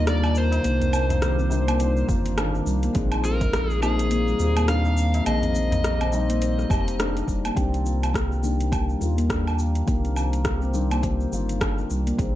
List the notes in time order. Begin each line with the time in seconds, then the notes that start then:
Already playing: D#2 C3 D#3 A#3 D4 F4 F5
0.07 D4 D5, cross-stick, closed hi-hat, shaker
0.24 tabla na, low woodblock, shaker
0.35 C5, shaker
0.52 closed hi-hat, tabla na, tabla tin, shaker
0.62 C2 D#3 A#3 D4, closed hi-hat, shaker
0.80 C4, closed hi-hat, tabla ge, shaker
0.93 C4, low woodblock, shaker
1.09 closed hi-hat, tabla na, tabla tin, tabla ge, shaker
1.22 G4, cross-stick, closed hi-hat, shaker
1.39 C4, shaker
1.49 D#3 G3 A#3 D4, tabla na, tabla tin, shaker
1.68 A#3, closed hi-hat, low woodblock, shaker
1.80 C5, closed hi-hat, shaker
1.97 shaker
2.06 G1 D#3 A#3 F4, kick, tabla na, tabla ge, shaker
2.26 closed hi-hat, shaker
2.38 D4, cross-stick, closed hi-hat, low woodblock, shaker
2.54 tabla na, shaker
2.66 C2 G3, shaker
2.83 A#3, closed hi-hat, shaker
2.93 A#1 A#2 G#3 C4, kick, closed hi-hat, shaker
2.97 D#4
3.12 closed hi-hat, low woodblock, shaker
3.24 F4 A#4, shaker
3.41 kick, closed hi-hat, tabla tin, tabla ge, shaker
3.53 cross-stick, closed hi-hat, shaker
3.70 G#4, shaker
3.81 G#3 A#3 C4 D#4 G#4, tabla na, tabla tin, low woodblock, shaker
3.99 closed hi-hat, shaker
4.11 A#3, closed hi-hat, shaker
4.28 G3, shaker
4.39 D#2 C4 F4 G4, tabla na, shaker
4.57 A#3, closed hi-hat, low woodblock, shaker
4.68 D4 F5, cross-stick, closed hi-hat, shaker
4.85 tabla na, shaker
4.97 shaker
5.14 closed hi-hat, tabla na, tabla tin, shaker
5.24 A#1 G#3 A#3 C4 D#5, closed hi-hat, low woodblock, shaker
5.28 D#3
5.42 C4, closed hi-hat, tabla ge, shaker
5.55 C4, shaker
5.71 closed hi-hat, tabla na, tabla tin, tabla ge, shaker
5.84 G4, cross-stick, closed hi-hat, shaker
6.01 C4, closed hi-hat, low woodblock, shaker
6.12 G3 C4 D#4, tabla na, tabla tin, shaker
6.29 A#3, closed hi-hat, shaker
6.42 C5, closed hi-hat, shaker
6.59 cross-stick, shaker
6.70 F1 C4 G4, kick, tabla na, tabla ge, low woodblock, shaker
6.88 closed hi-hat, shaker
6.99 D4, cross-stick, closed hi-hat, shaker
7.16 closed hi-hat, tabla na, shaker
7.28 F1 G3, kick, shaker
7.45 A#3, closed hi-hat, low woodblock, shaker
7.54 C2 D#3 A#3 C4 D4 G4 G5, kick, closed hi-hat, shaker
7.74 closed hi-hat, shaker
7.86 F4, shaker
8.03 closed hi-hat, low woodblock, shaker
8.14 kick, cross-stick, closed hi-hat, shaker
8.32 shaker
8.42 D#3 A#3 D4, shaker
8.61 closed hi-hat, shaker
8.72 A#3, kick, closed hi-hat, low woodblock, shaker
8.89 G3, shaker
8.99 D#2 D#3 A#3 F4, shaker
9.03 F4
9.18 A#3, closed hi-hat, shaker
9.30 D4, kick, cross-stick, closed hi-hat, shaker
9.47 low woodblock, shaker
9.59 shaker
9.75 closed hi-hat, shaker
9.85 C2 D#3 A#3 D4, kick, closed hi-hat, shaker
10.05 C4, closed hi-hat, shaker
10.16 C4, low woodblock, shaker
10.33 closed hi-hat, shaker
10.45 G4, kick, cross-stick, closed hi-hat, shaker
10.62 C4, shaker
10.73 D#3 G3 A#3 D4, shaker
10.91 A#3, closed hi-hat, low woodblock, shaker
11.03 C5, kick, closed hi-hat, shaker
11.20 shaker
11.30 G1 D#3 A#3, shaker
11.34 F4
11.49 closed hi-hat, shaker
11.61 D4, kick, cross-stick, closed hi-hat, low woodblock, shaker
11.78 shaker
11.90 C2 G3, shaker
12.07 A#3, closed hi-hat, shaker
12.16 A#1 D#3 G#3 C4, kick, closed hi-hat, shaker